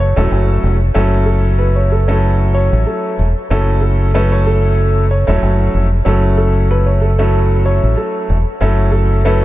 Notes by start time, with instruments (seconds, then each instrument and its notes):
Already playing: fingered electric bass F#1
0.00 upright piano C#5
0.16 fingered electric bass E1, upright piano F#3 A3 C#4 E4 A4
0.32 fingered electric bass F#1
0.64 fingered electric bass F1
0.94 fingered electric bass F#1, upright piano F#3 A3 C#4 E4 A4
1.26 upright piano A4
1.58 upright piano B4
1.76 upright piano C#5
1.92 upright piano A4
2.08 upright piano F#3 A3 C#4 E4 A4
2.54 upright piano C#5
2.73 fingered electric bass A1
2.87 upright piano A4
3.19 fingered electric bass E1
3.50 fingered electric bass F#1, upright piano F#3 A3 C#4 E4 A4
3.81 upright piano A4
4.14 upright piano F#3 A3 C#4 E4 A4 B4
4.32 upright piano C#5
4.46 upright piano A4
5.11 upright piano C#5
5.27 fingered electric bass E1, upright piano F#3 A3 C#4 E4 A4
5.42 fingered electric bass F#1
5.74 fingered electric bass F1
6.05 fingered electric bass F#1, upright piano F#3 A3 C#4 E4 A4
6.37 upright piano A4
6.71 upright piano B4
6.86 upright piano C#5
7.01 upright piano A4
7.18 upright piano F#3 A3 C#4 E4 A4
7.66 upright piano C#5
7.83 fingered electric bass A1
7.97 upright piano A4
8.30 fingered electric bass E1
8.61 fingered electric bass F#1, upright piano F#3 A3 C#4 E4 A4
8.92 upright piano A4
9.25 upright piano F#3 A3 C#4 E4 A4 B4